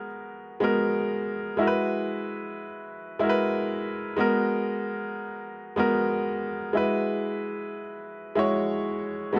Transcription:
Already playing: G#3 B3 F#4 A#4
0.60 G#3 B3 F#4 A#4
1.57 G#3 E4 F#4
1.61 A#4
1.67 B4
3.19 G#3 E4 F#4 A#4
3.29 B4
4.16 G#3 B3 F#4 A#4
5.76 G#3 B3 F#4 A#4
6.73 G#3 E4 F#4
6.77 B4
8.35 G#3 E4 F#4 C#5
9.33 G#3 B3 F#4 A4

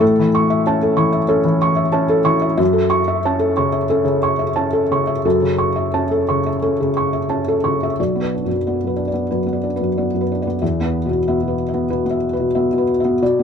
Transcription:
Already playing: E3 E5
0.01 A2 A4
0.19 E3
0.35 C#6
0.50 E5
0.67 C#4 A5
0.83 A4
0.97 E3 C#6
1.12 E5
1.28 C#4 A4
1.45 E3
1.62 C#6
1.76 E5
1.92 C#4 A5
2.09 A4
2.25 E3 C#6
2.42 E5
2.57 F#2 E5
2.73 A4
2.90 C#6
3.08 E5
3.25 C#4 A5
3.39 A4
3.57 C#3 C#6
3.72 E5
3.90 C#4 A4
4.05 C#3
4.23 C#6
4.39 E5
4.56 C#4 A5
4.73 A4
4.91 C#3 C#6
5.07 E5
5.25 F#2 A4
5.42 C#3
5.58 C#6
5.76 E5
5.94 C#4 A5
6.11 A4
6.29 C#3 C#6
6.46 E5
6.62 C#4 A4
6.80 C#3
6.97 C#6
7.13 E5
7.30 C#4 A5
7.48 A4
7.64 C#3 C#6
7.83 E5
7.99 B1 D5
8.16 B3
8.22 B4
8.34 D4
8.45 F#2
8.51 F#2
8.67 B3 D5
8.84 F#2 B4
8.97 D4
9.08 D5
9.14 B3
9.31 F#2 B4
9.46 B3
9.53 D5
9.64 D4
9.76 B4
9.81 F#2
9.98 B3 D5
10.14 F#2
10.21 B4
10.32 D4
10.42 D5
10.47 B3
10.62 E2 E5
10.81 B3 B4
11.06 B2
11.11 B2
11.28 B3 E5
11.42 B2
11.48 B4
11.69 E5
11.74 B3
11.90 B2 B4
12.06 B3
12.10 E5
12.33 B4
12.40 B2
12.55 B3 E5
12.73 B2
12.78 B4
13.00 E5
13.05 B3
13.22 B2 D5
13.39 B3

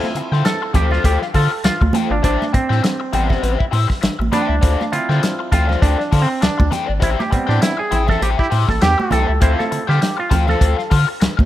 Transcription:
Already playing: F3 C4 E4
0.03 snare, high conga
0.15 D3, muted overdriven electric guitar stroke, closed hi-hat, muted conga
0.32 D3 F4 A4 C5 G5, snare
0.45 A4, muted overdriven electric guitar stroke, snare, closed hi-hat
0.62 muted overdriven electric guitar stroke
0.74 D2 F4 G4 A4 C5 G5, kick, closed hi-hat, muted conga, low conga
0.91 F4 A4 C5 F5, snare, low conga
1.04 D2 F4 G4 A4 C5 G5, kick, closed hi-hat, muted conga
1.22 muted overdriven electric guitar stroke, snare
1.34 D3 F4 A4 C5 F5, kick, open hi-hat, muted conga
1.51 muted overdriven electric guitar stroke
1.64 D2 F4, muted overdriven electric guitar stroke, snare, closed hi-hat
1.81 D2, muted overdriven electric guitar stroke, kick, high conga
1.93 F4 A4 C5 G5, snare, closed hi-hat, muted conga, high conga, low conga
2.10 G#1 D4, muted overdriven electric guitar stroke
2.23 A1 D4 E4 G4 C5 E5, kick, closed hi-hat, muted conga
2.42 snare, high conga
2.53 A2 C4, muted overdriven electric guitar stroke, kick, closed hi-hat, muted conga
2.69 A2 E4 G4 C5 G5, snare
2.82 muted overdriven electric guitar stroke, snare, closed hi-hat, muted conga
3.00 muted overdriven electric guitar stroke
3.13 A1 G3 B3 C4 E4 G4 C5 G5, closed hi-hat, low conga
3.29 E4 G4 C5 E5, kick, snare, low conga
3.42 A1 E4 G4 C5 G5, closed hi-hat, muted conga
3.59 muted overdriven electric guitar stroke, kick
3.71 A2 E4 G4 C5 E5, open hi-hat, muted conga
3.88 muted overdriven electric guitar stroke, kick, snare
4.01 A1, muted overdriven electric guitar stroke, snare, closed hi-hat, muted conga
4.19 A1, muted overdriven electric guitar stroke, high conga
4.32 D4 E4 G4 C5 G5, snare, closed hi-hat, muted conga, high conga, low conga
4.48 C#2, muted overdriven electric guitar stroke
4.61 D2 D4 A4 C5 F5, kick, closed hi-hat, muted conga
4.81 snare, high conga
4.92 D3 F3 C4 E4 F4, muted overdriven electric guitar stroke, closed hi-hat
5.09 D3 D4 A4 C5 G5, snare
5.22 muted overdriven electric guitar stroke, snare, closed hi-hat, muted conga
5.39 muted overdriven electric guitar stroke
5.52 D2 D4 F4 A4 C5 G5, kick, closed hi-hat, muted conga, low conga
5.69 D4 A4 C5 F5, snare, low conga
5.82 D2 D4 A4 C5 G5, kick, closed hi-hat, muted conga
5.99 muted overdriven electric guitar stroke, snare
6.11 D3 D4 A4 C5 F5, kick, open hi-hat
6.22 C4
6.28 muted overdriven electric guitar stroke
6.41 D2 D4, muted overdriven electric guitar stroke, snare, closed hi-hat
6.58 D2, muted overdriven electric guitar stroke, kick, high conga
6.71 D4 A4 C5 G5, snare, closed hi-hat, high conga, low conga
6.88 G#1, muted overdriven electric guitar stroke
7.00 A1 E4 G4 C5 E5, kick, closed hi-hat, muted conga
7.19 G4, snare, high conga
7.30 A2 G3 B3 C4, muted overdriven electric guitar stroke, kick, closed hi-hat
7.47 A2 D4 E4 G4 C5 G5, snare
7.61 E4, muted overdriven electric guitar stroke, snare, closed hi-hat, muted conga
7.77 G#4, muted overdriven electric guitar stroke
7.91 A1 E4 G4 C5 G5, closed hi-hat, muted conga, low conga
8.07 E4 G4 A4 C5 E5, kick, snare, low conga
8.21 A1 E4 G4 C5 G5, closed hi-hat, muted conga
8.38 E4 G4, muted overdriven electric guitar stroke, kick
8.50 A2 E4 G4 C5 E5, open hi-hat, muted conga
8.68 A1 A4, muted overdriven electric guitar stroke, kick, snare, high conga
8.81 E2 G4, muted overdriven electric guitar stroke, snare, closed hi-hat, muted conga
8.98 muted overdriven electric guitar stroke, high conga
9.11 C2 E4 G4 A4 C5 G5, snare, closed hi-hat, muted conga, high conga, low conga
9.28 C#2, muted overdriven electric guitar stroke
9.41 D2 F3 C4 E4 F4 A4 C5 F5, kick, closed hi-hat, muted conga
9.59 A4, snare, high conga
9.71 D3, muted overdriven electric guitar stroke, closed hi-hat
9.87 D3 F4 G4 A4 C5 G5, snare
10.00 muted overdriven electric guitar stroke, snare, closed hi-hat, muted conga
10.17 F4, muted overdriven electric guitar stroke
10.30 D2 F4 A4 C5 G5, kick, closed hi-hat, muted conga, low conga
10.47 F4 A4 C5 F5, snare, low conga
10.60 D2 F4 A4 C5 G5, kick, closed hi-hat
10.77 muted overdriven electric guitar stroke, snare
10.90 D3 F4 A4 C5 F5, kick, open hi-hat
11.07 muted overdriven electric guitar stroke
11.21 D2, muted overdriven electric guitar stroke, snare, closed hi-hat, muted conga
11.37 D2, muted overdriven electric guitar stroke, kick, high conga

